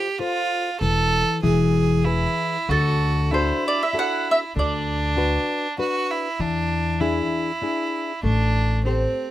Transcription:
Already playing: G4
0.19 F4 A4 C5
0.81 E1 E3 A4
1.43 E1 E3 G#4
2.04 E4 G#4 B4
2.69 D2 D3 F#4 A4
3.31 D4 E4 F#4 A4 C5
3.68 D5
3.83 E5
3.93 D4 F#4 A4
3.99 F#5
4.31 E5
4.56 D2 D3 D4 D5
5.17 D4 F#4 B4
5.78 D4 F#4 B4
6.11 E4
6.40 E2 E3 D4
7.00 D4 E4 G#4
7.62 D4 E4 G#4
8.23 A1 A3 D4
8.85 C4 G4 A4 C5

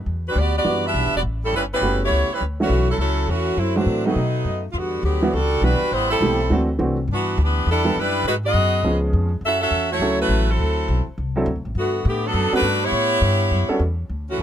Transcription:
0.06 E2
0.28 G3 D4 F#4 B4
0.35 D2 B3 F#4 G4 D5
0.57 B3 F#4 G4 D5
0.65 F#2 E3 G3 B3 D4 F#4
0.87 D4 G4 B4 E5
0.94 B1
1.04 G1
1.14 E1 B3 F#4 G4 D5
1.23 A1
1.44 G3 C#4 E4 A4
1.53 G1 G3 C#4 E4 B4
1.74 G3 C#4 E4 B4
1.81 F#1 A3 B3 C#4 F#4 G4
2.04 B3 E4 G4 C#5
2.10 C#2
2.29 muted upright bass stroke
2.33 G3 C#4 E4 B4
2.41 D2
2.60 E3 A3 C#4 D4 F#4
2.69 B1
2.90 F#3 C#4 E4 A4
2.98 C#2 F#3 C#4 E4 A4
3.27 E2 E3 A3 C#4 F#4
3.57 F#2 F#3 A3 C4 E4
3.76 E3 F#3 A3 C4 D4 F#4
3.86 A2
4.05 D#3 F#3 A3 B3 D#4 F#4
4.16 B2
4.45 F#2
4.72 E2 F4
4.77 D3 G3 B3 F#4
5.03 D2 D3 F#3 B3 G4
5.22 E3 G3 B3 D4 F#4
5.33 C#2 G3 D4 F#4 A4
5.61 B1 E3 G3 B3 D4 F#4 B4
5.81 muted upright bass stroke
5.91 A1 G3 B3 E4 C5
6.10 G3 C4 E4 A4
6.21 B1 E3 A3 B3 C4 G4
6.50 D2 E3 A3 C4 D4 F#4
6.79 C2 E3 A3 C4 D4 F#4
7.08 G2
7.13 E3 B3 D4 F#4
7.37 D2
7.43 E3 B3 D4 G4
7.66 E2 G3
7.70 D4 E4 A4
7.85 E3 G3 B3 D4 G4
7.96 F#2 G3 D4 E4 B4
8.24 G#2 G#3 D#4 F#4 B4
8.45 B3 F#4 G#4 D#5
8.54 F#2
8.83 C#2 F3 G#3 B3 C#4 G#4
9.13 F2
9.41 F#2
9.46 C#4 F#4 A4 E5
9.61 C#4 F#4 A4 E5
9.71 E2
9.91 A3 E4 F#4 C#5
10.00 C#2 F#3 A3 C#4 E4 A4
10.21 A3 E4 F#4 B4
10.29 A1
10.50 F#3 C4 E4 A4
10.59 D2
10.88 B1
11.07 muted upright bass stroke
11.18 C2
11.36 F#3 C4 D4 E4 A4
11.46 D2
11.56 C2
11.65 A1
11.75 G2 D3 A3 B3 F#4
12.05 A2 D3 A3 B3 G4
12.26 F#3 B3 D4 A4
12.34 F#2
12.53 G3 A3 B3 C#4 D4 F#4 A4 B4, muted upright bass stroke
12.62 G2
12.84 B3 E4 G4 C#5
12.92 A2
13.22 G2
13.51 F#2
13.68 G3 B3 C#4 F#4 A4, muted upright bass stroke
13.79 E2
14.10 D2
14.30 E3 A3 C#4 F#4
14.38 C#2

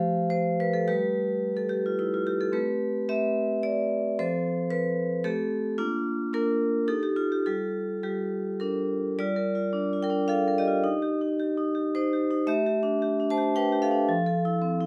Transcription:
Already playing: F3 A3 G4 C5 F5
0.30 C5
0.60 B4
0.74 A4
0.88 G3 A3 G4 B4
1.57 A4
1.69 G4
1.86 F4
1.99 E4
2.14 F4
2.27 G4
2.41 A4
2.52 A3 C4 G4 B4
3.09 A3 C4 G4 E5
3.63 D5
4.19 F3 C4 A4 C5
4.71 B4
5.24 A3 C4 G4 A4
5.78 A#3 D4 F4
6.33 A#3 D4 F4 A#4
6.88 D#4 G4 A4
7.03 G4
7.16 F4
7.32 G4
7.46 G3 F4 A4
8.03 G3 F4 G4 A4
8.60 D4 A#4
9.19 G3 F4 D5
9.36 A#4
9.55 F4
9.73 D4
9.93 F4
10.03 A#4 G5
10.10 D4
10.28 F4 A4 F5
10.48 A#4
10.58 G4 D#5
10.68 F4
10.84 D#4
11.02 G4
11.21 D#4
11.40 G4
11.58 D#4
11.75 G4
11.95 D#4 C5
12.13 G4
12.31 D#4
12.47 A3 G4 E5
12.66 G4
12.83 D4
13.02 G4
13.20 D4
13.30 C5 A5
13.38 G4
13.55 D4 B4 G5
13.72 G4
13.82 A4 F5
13.91 D4
14.09 F3
14.26 A4
14.45 E4
14.62 C4
14.81 E4

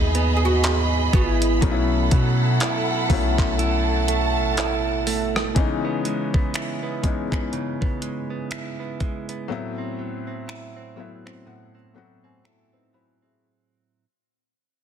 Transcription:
Already playing: D#2 G#2 E3 F#3 G#3 B3 D#4 F#4 G#4 D#5 B5
0.15 B3, closed hi-hat
0.37 G#4
0.45 F#4
0.64 clap, closed hi-hat
1.13 G#1 B3 E4, kick, closed hi-hat
1.42 closed hi-hat
1.61 B1 B2 F#3 A3 B3 C#4 D#4 A4 F#5, kick, closed hi-hat
1.71 E4
2.11 B2 F#3, kick, closed hi-hat
2.60 E4, clap, closed hi-hat
3.09 B1 F#3 A3 B3 C#4 E4, kick, open hi-hat
3.38 kick, clap
3.59 E4 A5, closed hi-hat
4.08 A3, closed hi-hat
4.37 A1
4.57 E4, clap, closed hi-hat
5.07 A3, open hi-hat
5.36 cross-stick
5.55 C#3 E3 G#3 B3 C#4 D#4, kick, closed hi-hat
5.85 B3
6.05 G#3, closed hi-hat
6.34 B3, kick
6.54 E4, finger snap, closed hi-hat
6.83 B3
7.02 E3 G#3 B3 C#4 D#4, kick, closed hi-hat
7.31 E3 G#3 B3 C#4 D#4, finger snap, kick
7.53 C#3, closed hi-hat
7.81 B3, kick
8.02 G#3, closed hi-hat
8.30 B3
8.51 E4, finger snap, closed hi-hat
8.80 B3
9.00 G#3, kick, closed hi-hat
9.29 B3, closed hi-hat
9.48 A2 F#3 A3 B3 C4 E4
9.78 C4
9.99 F#3
10.27 C4
10.48 E4, finger snap
10.76 C4
10.96 F#3 A3 B3 C4 E4 E5
11.26 C4, finger snap
11.46 A2 F#5
11.75 C4
11.94 F#3 A3 B3 C4 F#4 F#5
12.24 C4 G#5
12.45 C4 E4 A4 A5, finger snap
12.73 C4 D#4 B4
12.94 F#3 E4 C5 B5
13.22 C4 G#4 E5

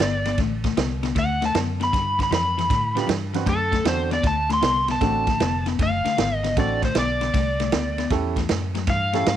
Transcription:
Already playing: D5
0.00 G1 D3 B3, snare, ride
0.25 D3 B3, snare, ride
0.38 A1 D3 A3, kick, snare, ride
0.64 D3 A3, kick, snare, ride
0.77 C2 D3 B3, snare, ride
1.03 D3 B3, snare, ride
1.15 D2 D3 A3 F#5, kick, snare, ride
1.42 D3 A3 A5, snare, ride
1.54 F#2 D3 B3, snare, ride
1.80 D3 B3 B5, snare, ride
1.93 G2 D3, kick, snare, ride
2.18 G2 D3, kick, snare, ride
2.23 B5
2.31 F2 G2 E3 B5, snare, ride
2.57 G2 E3, snare, ride
2.70 G2 A2 D3, kick, snare, ride
2.95 G2 D3 B3 D4 F4 G4, snare, ride
3.07 G2 E3, snare, ride
3.34 G2 E3 C4 D4 F#4 B4, snare, ride
3.46 F#2 D3 A3 A4, kick, snare, ride
3.72 D3 A3, kick, snare, ride
3.85 E2 D3 B3 C4 D4 F#4 A4 C5, snare, ride
4.11 D3 B3 D5, snare, ride
4.23 D2 D3 A3 A5, kick, snare, ride
4.49 D3 A3 C6, snare, ride
4.61 C2 D3 B3, snare, ride
4.88 D3 B3 A5, snare, ride
5.01 A1 D3 A3 C4 D4 F#4 A4, kick, snare, ride
5.27 D3 A3, kick, snare, ride
5.40 F1 D3 B3, snare, ride
5.66 D3 B3, snare, ride
5.79 F#1 D3 A3 F5, kick, snare, ride
6.05 D3 A3, snare, ride
6.17 G#1 D3 B3, snare, ride
6.36 D#5
6.43 D3 B3, snare, ride
6.57 A1 D3 A3 C4 D4 F#4 A4 D5, kick, snare, ride
6.82 D3 A3 C5, kick, snare, ride
6.95 B1 D3 B3 D5, snare, ride
7.21 D3 B3, snare, ride
7.34 C2 D3 A3, kick, snare, ride
7.60 D3 A3, snare, ride
7.72 D2 D3 B3, snare, ride
7.98 D3 B3, snare, ride
8.10 E2 A2 E3 C#4 E4 G4 A4, kick, snare, ride
8.36 A2 E3, kick, snare, ride
8.49 F#2 A2 F#3, snare, ride
8.75 A2 F#3, snare, ride
8.87 G2 A2 E3 F5, kick, snare, ride
9.13 A2 E3 C#4 E4 G4 A4, snare, ride
9.26 G#2 A2 F#3, snare, ride

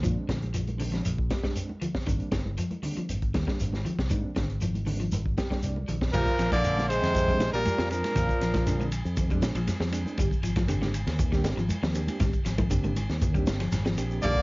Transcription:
0.02 A#2 F3 G#3 C4 D4, kick, closed hi-hat, low conga, shekere
0.29 A#1 D3, kick, snare, closed hi-hat, high conga, shekere
0.42 closed hi-hat, high conga
0.54 F3, closed hi-hat, shekere
0.68 closed hi-hat, high conga
0.78 D3 G#3 C4 D4, open hi-hat, low conga, shekere
0.92 F3, snare, closed hi-hat
1.05 A#1, closed hi-hat, shekere
1.18 kick
1.30 G3, kick, snare, closed hi-hat, high conga, shekere
1.43 G3 G#3 C4 D4, kick, snare, closed hi-hat
1.56 closed hi-hat, shekere
1.69 high conga
1.81 F3, closed hi-hat, low conga, shekere
1.95 kick, snare
2.06 G#1 D#3 G3 A#3 C4 D4, kick, closed hi-hat, shekere
2.20 closed hi-hat
2.32 G1 D3, kick, snare, closed hi-hat, high conga, shekere
2.45 high conga
2.58 F3, closed hi-hat, shekere
2.71 closed hi-hat, high conga
2.83 D3 G3 A#3 C4 D4, open hi-hat, low conga, shekere
2.97 F3, muted fingered electric bass stroke, closed hi-hat
3.09 G#1, closed hi-hat, shekere
3.22 kick, closed hi-hat
3.34 D#2 G3, kick, snare, closed hi-hat, high conga, low conga, shekere
3.46 G3 A#3 C4 D4, kick, snare
3.60 G#1, closed hi-hat, shekere
3.73 snare, high conga
3.85 F3, closed hi-hat, low conga, shekere
3.98 C2, kick, snare
4.09 G#2 D#3 G3 A#3 C4 D4, kick, closed hi-hat, shekere
4.36 G#1 D3, kick, snare, closed hi-hat, high conga, shekere
4.50 closed hi-hat
4.61 F3, closed hi-hat, high conga, shekere
4.74 closed hi-hat, high conga
4.85 D3 G3 A#3 C4 D4, open hi-hat, low conga, shekere
5.00 F3, closed hi-hat
5.11 G#1, closed hi-hat, high conga, shekere
5.26 kick
5.38 G3 G5, kick, snare, closed hi-hat, high conga, shekere
5.50 G3 A#3 C4 D4, kick, snare, closed hi-hat
5.62 C2 D5, closed hi-hat, shekere
5.76 high conga
5.88 A#1 F3, closed hi-hat, low conga, shekere
6.01 kick, snare
6.12 A#1 A#2 F3 G3 A#4, kick, crash, high conga, low conga, shekere
6.27 kick, shekere
6.39 A#1 F3, snare, ride bell, shekere
6.51 D3 F3 A#3 D5, kick, ride bell, high conga, shekere
6.63 D3 G#3 C4 D4, ride bell, high conga, shekere
6.77 D3, snare, high conga, shekere
6.89 C3 G#3 C5, ride bell, shekere
7.02 F2, snare, ride bell, low conga, shekere
7.15 kick, ride bell, high conga, low conga, shekere
7.27 G3 G#3 C4 D4, kick, shekere
7.40 A#1, snare, ride bell, high conga, shekere
7.53 A#1 A#2 F3 G3 A#4, shekere
7.65 ride bell, high conga, shekere
7.78 F2 F3, snare, shekere
7.90 A#2 F3 G#3 C4 D4 A#4, ride bell, shekere
8.04 snare, ride bell, high conga, shekere
8.15 A#1, muted clean electric guitar stroke, kick, snare, ride bell, high conga, low conga, shekere
8.29 kick, shekere
8.41 A#1 F3, snare, ride bell, shekere
8.54 F3, kick, snare, ride bell, high conga, shekere
8.65 D3 G#3 C4 D4, ride bell, shekere
8.79 D3, high conga, shekere
8.92 ride bell, shekere
9.05 F2, shekere
9.17 kick, ride bell, high conga, low conga, shekere
9.29 G3 G#3 C4 D4, kick, shekere
9.42 A#1, snare, ride bell, high conga, shekere
9.55 A#1 F3, ride bell, shekere
9.68 snare, ride bell, high conga, shekere
9.80 F2 F3, snare, shekere
9.91 G#3 C4 D4, ride bell, shekere
10.06 high conga, shekere
10.18 G#1 G3, kick, ride bell, high conga, low conga, shekere
10.31 kick, shekere
10.43 G#1 F3, ride bell, shekere
10.56 F3, kick, snare, ride bell, high conga, shekere
10.67 D3 A#3 C4 D4 G4, ride bell, high conga, shekere
10.82 D3, snare, high conga, shekere
10.94 ride bell, shekere
11.07 D#2, snare, ride bell, low conga, shekere
11.19 kick, ride bell, high conga, low conga, shekere
11.31 G3 A#3 C4 D4 G4, kick, snare, shekere
11.44 G#1, snare, ride bell, high conga, shekere
11.57 G#1 F3, shekere
11.69 ride bell, high conga, shekere
11.83 D#2 F3, snare, shekere
11.94 A#3 C4 D4 G4, ride bell, shekere
12.07 ride bell, high conga, shekere
12.20 G#1 G3, kick, snare, ride bell, high conga, low conga, shekere
12.33 kick, shekere
12.45 G#1 F3, snare, ride bell, shekere
12.58 F3, kick, ride bell, high conga, shekere
12.69 D3 A#3 C4 D4 G4, kick, ride bell, high conga, shekere
12.84 D3, high conga, shekere
12.96 ride bell, high conga, shekere
13.10 D#2, snare, shekere
13.22 kick, ride bell, high conga, low conga, shekere
13.33 G3 A#3 C4 D4 G4, kick, shekere
13.47 G1, snare, ride bell, high conga, shekere
13.60 F3, snare, ride bell, shekere
13.72 G#1, snare, ride bell, high conga, shekere
13.85 F3, snare, shekere
13.96 A#1 A#3 C4 D4 G4, ride bell, shekere
14.11 shekere
14.21 A#1 D3 G3 A#3 D5, kick, snare, ride bell, high conga, low conga, shekere
14.36 kick, shekere

